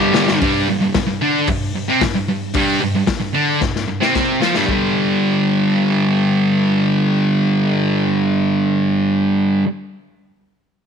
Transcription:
0.00 0.12 G2 loud
0.00 0.14 D3 loud
0.00 0.15 G3 loud
0.00 1.22 A#3 medium
0.00 0.41 G4 loud
0.14 0.39 G2 medium
0.14 0.40 D3 medium
0.14 0.40 G3 medium
0.14 snare loud
0.28 snare loud
0.42 0.67 G2 medium
0.42 0.68 G3 loud
0.42 kick loud
0.42 open hi-hat medium
0.70 0.80 G2 medium
0.81 0.94 G2 medium
0.94 1.06 G2 medium
0.94 kick loud
0.94 snare loud
0.94 open hi-hat medium
1.07 1.20 G2 medium
1.21 1.47 D3 medium
1.21 1.47 D4 medium
1.47 1.70 G2 medium
1.47 kick loud
1.47 open hi-hat medium
1.75 1.88 G2 medium
1.88 2.00 C3 medium
1.88 2.01 C4 medium
2.01 2.13 G2 medium
2.01 kick loud
2.01 snare loud
2.01 open hi-hat medium
2.14 2.27 G2 medium
2.28 2.49 G2 medium
2.54 2.80 G2 medium
2.54 2.81 G3 loud
2.54 kick loud
2.54 open hi-hat medium
2.82 2.95 G2 medium
2.96 3.06 G2 medium
3.07 3.19 G2 medium
3.07 kick loud
3.07 snare loud
3.07 open hi-hat medium
3.20 3.34 G2 medium
3.34 3.60 D3 medium
3.34 3.61 D4 medium
3.61 3.83 G2 medium
3.61 kick loud
3.61 snare medium
3.76 snare medium
3.88 4.01 G2 medium
4.00 4.12 C3 medium
4.00 4.14 C4 medium
4.00 snare medium
4.13 4.40 C3 medium
4.13 4.41 C4 medium
4.13 kick loud
4.13 snare medium
4.41 4.54 F3 medium
4.41 4.54 F4 medium
4.41 snare loud
4.54 4.65 G2 medium
4.54 4.68 G3 medium
4.54 snare medium
4.66 9.64 G2 medium
4.66 9.66 D3 medium
4.66 kick medium
4.71 9.68 G3 loud

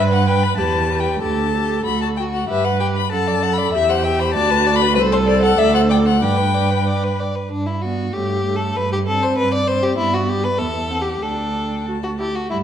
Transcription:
0.00 0.51 G2 medium
0.00 0.26 B4 medium
0.00 0.59 B4 loud
0.13 0.29 F#5 medium
0.27 0.57 B4 medium
0.27 0.45 G5 loud
0.43 0.57 B5 loud
0.57 1.14 E2 medium
0.57 1.20 G4 medium
0.57 0.89 B4 medium
0.57 1.02 A5 loud
0.90 1.21 B4 medium
1.00 1.21 G5 medium
1.21 1.78 D2 medium
1.21 1.53 G4 medium
1.21 2.15 A4 medium
1.21 1.83 A5 medium
1.54 1.85 G4 medium
1.85 2.41 D2 medium
1.85 2.16 F#4 medium
1.85 2.01 B5 medium
2.02 2.08 A5 medium
2.16 2.48 F#4 medium
2.16 2.23 G5 medium
2.34 2.48 F#5 medium
2.48 3.14 G2 medium
2.48 2.66 G4 medium
2.48 3.08 B4 medium
2.48 2.66 E5 loud
2.65 2.82 B4 medium
2.65 2.79 F#5 medium
2.80 2.99 G4 medium
2.80 2.86 G5 medium
2.96 3.12 B4 medium
2.96 3.11 B5 medium
3.12 3.73 F#2 medium
3.12 3.76 A4 medium
3.12 3.29 F#5 medium
3.12 3.55 A5 loud
3.28 3.44 D5 medium
3.43 3.60 F#5 medium
3.53 3.73 B5 loud
3.58 3.73 D5 medium
3.73 4.37 E2 medium
3.73 4.38 G4 medium
3.73 3.91 E5 loud
3.73 3.91 E5 medium
3.89 4.06 C5 medium
3.89 4.05 F#5 loud
4.03 4.21 E5 medium
4.03 4.21 G5 loud
4.19 4.34 C5 medium
4.19 4.33 B5 loud
4.34 4.99 D2 medium
4.34 4.99 F#4 medium
4.34 4.52 D5 medium
4.34 4.77 A5 loud
4.51 4.68 B4 medium
4.66 4.83 D5 medium
4.76 4.94 B5 loud
4.82 4.96 B4 medium
4.95 5.58 C2 medium
4.95 6.22 A4 loud
4.95 5.02 B4 loud
4.95 5.14 C5 medium
5.12 5.29 A4 medium
5.12 5.18 C5 loud
5.27 5.45 C5 medium
5.27 5.42 D5 loud
5.43 5.58 A4 medium
5.43 5.60 F#5 loud
5.58 6.24 D2 medium
5.58 5.75 D5 medium
5.58 5.74 E5 loud
5.74 5.91 C5 medium
5.74 5.81 F#5 loud
5.89 6.07 D5 medium
5.89 5.97 G5 loud
6.06 6.20 C5 medium
6.06 6.24 F#5 medium
6.21 7.31 G2 medium
6.21 7.18 B4 medium
6.21 6.39 D5 medium
6.21 7.20 G5 loud
6.37 6.56 B4 medium
6.54 6.72 D5 medium
6.71 6.86 B4 medium
6.87 7.05 D5 medium
7.04 7.21 B4 medium
7.20 7.37 D5 medium
7.35 7.51 B4 medium
7.51 8.07 G2 medium
7.51 7.68 D4 medium
7.67 7.83 E4 medium
7.82 8.13 B3 soft
7.82 8.15 F#4 medium
7.82 8.14 D5 soft
8.13 8.69 G2 medium
8.13 8.44 A3 soft
8.13 8.57 G4 medium
8.13 8.45 C#5 soft
8.45 8.75 A3 soft
8.45 8.76 C#5 soft
8.56 8.78 A4 medium
8.76 9.30 G2 medium
8.76 8.92 B4 medium
8.93 8.99 G4 medium
9.07 9.66 C4 medium
9.07 9.25 A4 medium
9.07 9.67 D5 medium
9.23 9.37 C5 medium
9.38 9.91 G2 medium
9.38 9.52 B4 medium
9.54 9.69 D5 medium
9.67 9.96 C4 medium
9.67 9.84 C5 medium
9.67 9.97 D5 medium
9.83 9.97 G4 medium
9.97 10.61 G2 medium
9.97 10.55 B3 medium
9.97 10.15 E4 medium
9.97 10.60 D5 medium
10.14 10.30 F#4 medium
10.29 10.45 G4 medium
10.44 10.60 B4 medium
10.58 11.22 E2 medium
10.58 10.66 B3 medium
10.58 11.03 A4 medium
10.58 10.92 E5 medium
10.90 10.98 C4 soft
10.90 11.21 F#5 medium
11.02 11.23 G4 medium
11.22 12.28 D2 medium
11.22 11.85 D4 medium
11.22 11.87 A4 medium
11.22 11.88 G5 soft
11.86 11.95 F#4 medium
11.86 12.30 A5 soft
12.04 12.10 F#4 medium
12.19 12.27 E4 soft
12.19 12.37 G4 medium
12.35 12.50 F#4 medium
12.50 12.63 G2 medium
12.50 12.63 G3 medium
12.50 12.57 E4 medium
12.50 12.63 E5 soft

